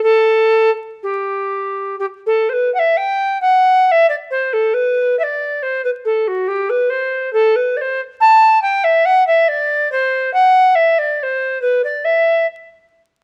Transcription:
0.03 0.70 A4 loud
1.03 1.96 G4 medium
1.99 2.05 G4 medium
2.26 2.51 A4 medium
2.49 2.73 B4 medium
2.49 2.54 C5 medium
2.74 2.80 F#5 medium
2.79 2.99 E5 medium
2.97 3.41 G5 medium
3.41 3.87 F#5 medium
3.87 3.92 F#5 medium
3.91 4.08 E5 medium
4.09 4.15 D5 medium
4.31 4.55 C5 medium
4.53 4.75 A4 medium
4.74 5.18 B4 medium
5.19 5.24 E5 medium
5.23 5.64 D5 medium
5.63 5.84 C5 medium
5.84 5.90 B4 medium
6.05 6.29 A4 medium
6.28 6.49 F#4 medium
6.48 6.71 G4 medium
6.70 6.91 B4 medium
6.90 7.32 C5 medium
7.33 7.57 A4 loud
7.56 7.78 B4 medium
7.77 7.82 D5 medium
7.81 8.01 C5 medium
8.20 8.62 A5 loud
8.62 8.86 G5 medium
8.84 9.07 E5 medium
9.05 9.26 F#5 loud
9.27 9.50 E5 medium
9.48 9.91 D5 loud
9.92 10.33 C5 loud
10.34 10.77 F#5 loud
10.75 11.00 E5 medium
10.99 11.19 D5 medium
11.19 11.61 C5 medium
11.19 11.24 D5 medium
11.62 11.82 B4 medium
11.84 12.06 D5 medium
12.05 12.46 E5 medium

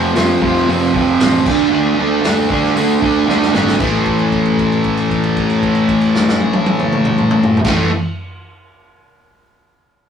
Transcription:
0.00 0.12 F1 medium
0.00 0.14 F2 medium
0.00 0.14 C3 medium
0.00 0.15 F3 loud
0.00 1.47 A3 medium
0.15 0.37 F1 loud
0.15 0.40 F2 medium
0.15 0.41 C3 loud
0.15 0.42 F3 loud
0.15 snare loud
0.15 open hi-hat medium
0.41 0.63 F1 medium
0.41 0.67 F2 medium
0.41 0.67 C3 loud
0.41 0.68 F3 loud
0.41 kick medium
0.56 snare soft
0.68 0.90 F1 loud
0.68 0.93 F2 loud
0.68 0.93 C3 loud
0.68 0.94 F3 loud
0.68 open hi-hat medium
0.93 1.15 F1 loud
0.93 1.20 F2 medium
0.93 1.21 C3 loud
0.93 1.21 F3 medium
0.93 kick loud
1.20 1.42 A1 loud
1.20 1.45 F2 medium
1.20 1.45 C3 loud
1.20 1.45 F3 loud
1.20 snare loud
1.20 open hi-hat medium
1.46 1.68 D2 loud
1.46 1.72 D3 medium
1.46 1.73 A3 medium
1.46 1.73 D4 loud
1.46 kick loud
1.46 crash loud
1.72 1.94 D2 loud
1.72 1.98 D3 loud
1.72 1.98 A3 loud
1.72 1.98 D4 loud
1.97 2.19 D2 medium
1.97 2.23 D3 medium
1.97 2.24 A3 medium
1.97 2.24 D4 loud
2.23 2.45 D2 medium
2.23 2.48 D3 loud
2.23 2.49 A3 loud
2.23 2.50 D4 loud
2.23 snare loud
2.23 open hi-hat medium
2.49 2.71 D3 medium
2.49 2.75 D3 medium
2.49 2.75 A3 loud
2.49 2.76 D4 loud
2.49 kick medium
2.64 snare soft
2.75 2.97 D2 loud
2.75 3.00 D3 medium
2.75 3.01 A3 loud
2.75 3.02 D4 loud
2.75 open hi-hat medium
3.01 3.24 D2 medium
3.01 3.27 D3 medium
3.01 3.27 A3 medium
3.01 3.28 D4 medium
3.01 kick medium
3.28 3.50 D2 loud
3.28 3.52 D3 medium
3.28 3.53 A3 medium
3.28 3.53 D4 medium
3.28 snare medium
3.42 snare medium
3.53 3.75 G#1 loud
3.53 3.78 D3 medium
3.53 3.78 A3 medium
3.53 3.79 D4 loud
3.53 snare medium
3.68 snare loud
3.79 7.55 A1 loud
3.79 7.58 A2 loud
3.79 7.59 E3 loud
3.79 7.60 A3 loud
3.79 kick loud
3.79 crash loud
4.05 kick medium
4.05 crash soft
4.19 crash soft
4.32 kick medium
4.32 crash soft
4.45 crash soft
4.58 kick medium
4.58 crash soft
4.72 crash soft
4.84 kick medium
4.84 crash medium
4.97 crash medium
5.10 kick medium
5.10 crash medium
5.23 crash medium
5.36 kick medium
5.36 crash medium
5.50 crash medium
5.62 kick medium
5.62 crash medium
5.75 crash medium
5.88 kick medium
5.88 crash medium
6.01 crash medium
6.15 snare loud
6.29 snare loud
6.40 high tom medium
6.53 high tom loud
6.66 high tom loud
6.80 mid tom loud
6.92 mid tom loud
7.05 mid tom loud
7.18 mid tom loud
7.31 mid tom loud
7.43 floor tom loud
7.57 floor tom loud
7.64 7.87 A1 medium
7.64 7.88 A2 loud
7.64 7.89 E3 loud
7.64 7.90 A3 loud
7.64 kick loud
7.64 snare loud
7.64 crash loud

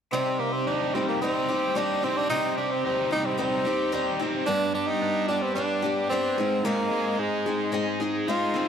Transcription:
0.12 0.94 C3 medium
0.12 1.21 G3 medium
0.12 0.41 C4 medium
0.12 0.95 C4 medium
0.12 0.95 D#4 medium
0.12 0.94 G4 medium
0.39 0.54 A#3 medium
0.39 1.49 G4 medium
0.53 0.66 C4 medium
0.67 0.95 D4 medium
0.67 1.21 D#4 medium
0.94 3.11 G3 medium
0.94 1.08 C4 medium
0.94 1.21 C4 soft
0.94 1.22 D#4 soft
0.94 1.22 G4 soft
1.08 1.21 A#3 medium
1.21 1.49 G3 medium
1.21 1.78 C4 medium
1.21 1.49 C4 medium
1.21 1.48 D#4 medium
1.21 1.47 G4 medium
1.49 1.75 C4 soft
1.49 1.75 D#4 soft
1.49 1.76 G4 soft
1.75 2.03 G3 medium
1.75 2.03 C4 medium
1.75 2.05 D4 medium
1.75 2.03 D#4 medium
1.75 2.01 G4 medium
2.03 2.18 C4 medium
2.03 2.29 C4 soft
2.03 2.30 D#4 soft
2.03 2.30 G4 soft
2.17 2.29 D4 loud
2.29 3.11 C3 medium
2.29 3.37 G3 medium
2.29 3.12 C4 medium
2.29 2.55 D#4 loud
2.29 3.11 D#4 medium
2.29 3.10 G4 medium
2.57 2.73 D4 medium
2.57 3.65 G4 medium
2.71 2.85 C4 medium
2.84 3.10 C4 medium
2.84 3.38 D#4 medium
3.11 4.47 G3 soft
3.11 3.37 C4 soft
3.11 3.27 D#4 medium
3.11 3.38 D#4 soft
3.11 3.38 G4 soft
3.26 3.38 C4 medium
3.38 3.65 G3 medium
3.38 3.66 C4 medium
3.38 4.16 C4 medium
3.38 3.65 D#4 medium
3.38 3.64 G4 medium
3.65 3.92 C4 soft
3.65 3.92 D#4 soft
3.65 3.93 G4 medium
3.92 4.20 G3 medium
3.92 4.20 C4 medium
3.92 4.19 D#4 medium
3.92 4.18 G4 medium
4.19 4.47 C4 soft
4.19 4.48 D#4 soft
4.19 4.47 G4 medium
4.46 5.28 G2 medium
4.46 5.29 G3 medium
4.46 5.29 B3 medium
4.46 4.72 D4 loud
4.46 5.27 G4 medium
4.74 4.89 D4 medium
4.74 5.82 G4 medium
4.88 5.28 D#4 loud
5.02 5.55 D4 medium
5.28 5.54 G3 soft
5.28 5.55 B3 soft
5.28 5.43 D4 medium
5.28 5.55 D4 soft
5.28 5.56 G4 soft
5.42 5.54 C4 medium
5.55 5.83 G3 medium
5.55 5.83 B3 medium
5.55 6.06 D4 medium
5.55 5.83 D4 medium
5.55 5.81 G4 medium
5.82 6.10 G3 soft
5.82 6.11 B3 soft
5.82 6.11 D4 soft
5.82 6.10 G4 medium
6.09 6.38 G3 medium
6.09 6.38 B3 medium
6.09 6.67 C4 medium
6.09 6.39 D4 medium
6.09 6.37 G4 medium
6.38 6.63 G#2 medium
6.38 6.64 C4 soft
6.38 6.65 D#4 soft
6.38 6.65 G#4 medium
6.64 8.00 G#2 medium
6.64 7.46 G#3 medium
6.64 7.21 A#3 medium
6.64 7.48 C4 medium
6.64 7.47 D#4 medium
6.64 7.45 G#4 medium
6.91 7.99 G#4 medium
7.19 8.01 G#3 medium
7.19 7.73 D#4 medium
7.46 8.68 G#3 medium
7.46 7.71 C4 soft
7.46 7.73 D#4 soft
7.46 7.73 G#4 soft
7.72 8.00 G#3 medium
7.72 8.00 C4 medium
7.72 8.00 D#4 medium
7.72 7.99 G#4 medium
8.00 8.28 C4 soft
8.00 8.28 D#4 soft
8.00 8.27 G#4 medium
8.28 8.55 G#3 medium
8.28 8.55 C4 medium
8.28 8.54 D#4 medium
8.28 8.68 F4 medium
8.28 8.53 G#4 medium
8.54 8.68 C4 soft
8.54 8.68 D#4 soft
8.54 8.68 G#4 medium

